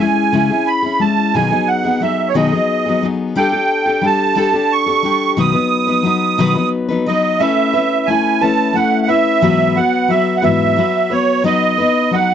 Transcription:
0.00 G#3 C#4 E4 G#4 G#5
0.32 C#3 G#3 C#4 E4 G#4
0.50 C#4 E4 G#4
0.67 B5
0.82 C#4 E4 G#4
1.00 G#3 C#4 E4 A5
1.34 B2 D#3 F#3 B3 D#4 G#4 G#5
1.51 F#3 B3 D#4 G#4
1.68 F#5
1.84 F#3 B3 D#4 G#4
2.00 F#3 B3 D#4 G#4 E5
2.28 C#5
2.34 B2 D#3 F#3 B3 D#4 G#4 D#5
2.52 F#3 B3 D#4 G#4
2.86 F#3 B3 D#4 G#4
3.02 F#3 B3 D#4 G#4
3.36 G3 D4 G4 A4 G5
3.52 D4 G4 A4
3.86 D4 G4 A4
4.01 G3 D4 G4 A4
4.06 A5
4.35 G3 D4 G4 A4
4.52 D4 G4 A4
4.72 C#6
4.86 D4 G4 A4
5.03 G3 D4 G4 A4
5.37 B2 D#3 F#3 B3 D#4 B4 D#6
5.52 F#3 B3 D#4 B4
5.87 B3 D#4 B4
5.91 F#3
6.03 F#3 B3 D#4 B4
6.38 B2 D#3 F#3 B3 D#4 B4
6.55 F#3 B3 D#4 B4
6.89 F#3 B3 D#4 B4
7.06 F#3 B3 D#4 B4 D#5
7.39 A3 C#4 E4 B4 E5
7.74 C#4 E4 B4
8.06 A3 C#4 E4 G#5
8.11 B4
8.41 A3 C#4 E4 B4 A5
8.74 A3 C#4 E4 B4 F#5
9.03 F#5
9.08 C#4 E4 B4 E5
9.41 G#2 E3 F#3 B3 F#4 B4
9.75 F#3 B3 F#4 B4 F#5
10.08 F#3 B3 F#4 B4 E5
10.37 F#5
10.42 G#2 E3 F#3 B3 F#4 B4 E5
10.76 F#3 B3 F#4 B4
11.10 F#3 B3 F#4 B4 C#5
11.43 F#3 B3 D#4 B4 D#5
11.78 B3 D#4 B4
12.11 F#3 B3 D#4 B4 F#5

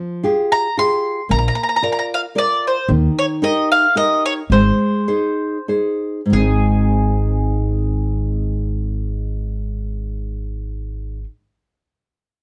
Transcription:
Already playing: F3
0.23 F4 G4 G#4
0.52 A#5
0.77 F4 G4 G#4 C6
1.29 A#1 A#3 A#5
1.39 A#5
1.48 A#5
1.55 A#5
1.63 A#5
1.69 A#5
1.76 A#5
1.82 F4 A#4 D5 A#5
1.92 A#5
1.99 A#5
2.14 F5
2.35 F4 A#4 D5
2.67 C5
2.88 D#2 D#3
3.19 C#5
3.42 D#4 G4 A#4 D#5
3.72 F5
3.95 D#4 G4 A#4 D#5
4.26 C#5
4.50 G#1 G#3 C5
5.08 D#4 G#4 C5
5.68 D#4 G#4 C5
6.26 G#2
6.30 G#1 D#3 G#3 G#4
6.36 C4 D#4

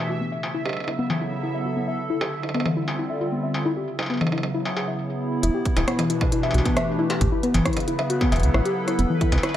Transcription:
Already playing: B2 E3 D4 G4 E5
0.10 C#3 F#4
0.21 B3
0.32 E5
0.43 struck metal
0.54 E4
0.61 F#3 B3
0.65 G4, struck metal
0.69 struck metal
0.73 E4, struck metal
0.77 struck metal
0.80 struck metal
0.84 E4, struck metal
0.88 A4, struck metal
0.99 B3
1.10 E3, struck metal
1.21 E4
1.43 E4
1.54 E5
1.66 F#4
1.77 B3
1.88 D3 E5
2.10 E4
2.21 G4, struck metal
2.40 G3 C4 E4, struck metal
2.49 struck metal
2.54 B3, struck metal
2.60 struck metal
2.65 E3 F4, struck metal
2.77 E4
2.88 struck metal
2.99 E4
3.10 E5
3.21 F4
3.32 B3
3.43 E5
3.54 struck metal
3.65 C#3 E4
3.77 G4
3.83 F#3
3.95 B3
3.99 E4, struck metal
4.03 struck metal
4.06 B3, struck metal
4.10 struck metal
4.14 struck metal
4.17 struck metal
4.21 E3, struck metal
4.27 struck metal
4.32 E4, struck metal
4.38 struck metal
4.43 E4 G#4, struck metal
4.54 E4
4.65 E5, struck metal
4.77 G#4, struck metal
4.88 E5
5.43 E1 B2 E4 B4, closed hi-hat
5.52 E3 G4
5.65 kick, closed hi-hat
5.77 D1 E4, closed hi-hat, struck metal
5.83 D4
5.88 B3, cross-stick, closed hi-hat
5.99 E3, closed hi-hat, struck metal
6.10 E4, closed hi-hat
6.21 A3 G4, kick, struck metal
6.32 E4, closed hi-hat
6.43 E5, struck metal
6.51 B1 F#4, closed hi-hat, struck metal
6.58 struck metal
6.65 B3, kick, closed hi-hat, struck metal
6.77 E5, cross-stick, closed hi-hat
6.99 E4
7.10 G4, closed hi-hat, struck metal
7.21 A1 C#3, kick, closed hi-hat
7.32 E4
7.43 B3, closed hi-hat
7.54 G1 E3, closed hi-hat, struck metal
7.59 B3
7.65 F#3 E4, kick, cross-stick, closed hi-hat
7.73 closed hi-hat
7.77 closed hi-hat, struck metal
7.80 closed hi-hat
7.88 E4, closed hi-hat
7.99 E4 A4 E5, struck metal
8.10 F#4, closed hi-hat
8.21 B3, kick, struck metal
8.32 E1 E5, closed hi-hat, struck metal
8.36 closed hi-hat
8.40 closed hi-hat
8.43 C#2, closed hi-hat
8.54 A1 E4, cross-stick
8.66 G4, closed hi-hat
8.88 E4, cross-stick, closed hi-hat
8.99 F1 D3 B3, closed hi-hat
9.06 G3
9.10 E3
9.21 E4, kick, closed hi-hat
9.32 C2, closed hi-hat, struck metal
9.38 struck metal
9.43 E4, cross-stick, closed hi-hat, struck metal
9.49 F4, struck metal

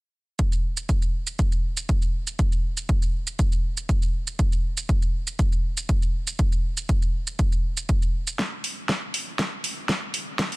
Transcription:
0.39 kick, shaker
0.52 shaker
0.77 shaker
0.89 kick, shaker
1.02 shaker
1.27 shaker
1.39 kick, shaker
1.52 shaker
1.77 shaker
1.89 kick, shaker
2.02 shaker
2.27 shaker
2.39 kick, shaker
2.52 shaker
2.77 shaker
2.89 kick, shaker
3.02 shaker
3.27 shaker
3.39 kick, shaker
3.52 shaker
3.77 shaker
3.89 kick, shaker
4.02 shaker
4.27 shaker
4.39 kick, shaker
4.52 shaker
4.77 shaker
4.89 kick, shaker
5.02 shaker
5.27 shaker
5.39 kick, shaker
5.52 shaker
5.77 shaker
5.89 kick, shaker
6.02 shaker
6.27 shaker
6.39 kick, shaker
6.52 shaker
6.77 shaker
6.89 kick, shaker
7.02 shaker
7.27 shaker
7.39 kick, shaker
7.52 shaker
7.77 shaker
7.89 kick, shaker
8.02 shaker
8.27 shaker
8.39 kick, snare
8.64 open hi-hat
8.89 kick, snare
9.14 open hi-hat
9.39 kick, snare
9.64 open hi-hat
9.89 kick, snare
10.14 open hi-hat
10.39 kick, snare
10.52 open hi-hat

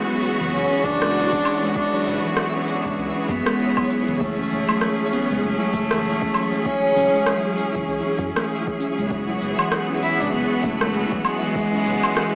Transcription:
Already playing: E3 B3 E4 F#4 G#4 C#5
0.10 F#3
0.23 shaker
0.40 F#1 E3, shaker
0.53 F#1 C#4, shaker
0.71 C#4
0.84 F#1 D4, kick, shaker
1.02 G#3, cross-stick, shaker
1.15 shaker
1.32 E1 C#4, kick
1.45 low woodblock, shaker
1.63 G#3, shaker
1.76 D4, kick, shaker
1.93 F#3
2.06 F#1, shaker
2.24 E3, shaker
2.37 cross-stick, shaker
2.55 C#4
2.68 shaker
2.85 F#1 G#3, kick, shaker
2.98 C#2, shaker
3.16 C#4
3.29 F#2 B3, kick, shaker
3.46 G#3, cross-stick, shaker
3.59 shaker
3.77 F#3, kick, low woodblock
3.90 shaker
4.08 F#1 E3, shaker
4.21 F#3 A3 C#4, kick, shaker
4.38 C#4
4.51 F#1, shaker
4.69 A3, low woodblock, shaker
4.81 cross-stick, shaker
5.12 B3 C#4, shaker
5.30 F#1 G#3, shaker
5.43 F#1 A3, shaker
5.61 F#3
5.74 F#1, kick, shaker
5.91 E3, cross-stick, shaker
6.04 shaker
6.22 E1 C#4, kick
6.34 low woodblock, shaker
6.53 A3, shaker
6.66 C#4, kick, shaker
6.96 F#1 C#4, shaker
7.14 G#3, shaker
7.26 cross-stick, shaker
7.45 F#3
7.57 shaker
7.75 F#1 E3, kick, shaker
7.88 C#2, shaker
8.06 C#4
8.19 F#2, kick, shaker
8.36 A3, cross-stick, shaker
8.49 shaker
8.67 kick
8.80 C#4, shaker
8.98 F#1 G#3, shaker
9.11 E3 B3 F#4, kick, shaker
9.28 F#3
9.41 F#1, shaker
9.59 E3, low woodblock, shaker
9.72 cross-stick, shaker
9.90 C#4
10.02 E4, shaker
10.20 F#1 G#3 D4, shaker
10.33 F#1 B3, shaker
10.64 F#1 A3 C#4, kick, shaker
10.81 G#3, cross-stick, shaker
10.94 shaker
11.12 E1 F#3, kick
11.25 G#3, low woodblock, shaker
11.42 E3, shaker
11.55 kick, shaker
11.73 C#4
11.86 F#1, shaker
12.03 G#3, low woodblock, shaker
12.17 cross-stick, shaker

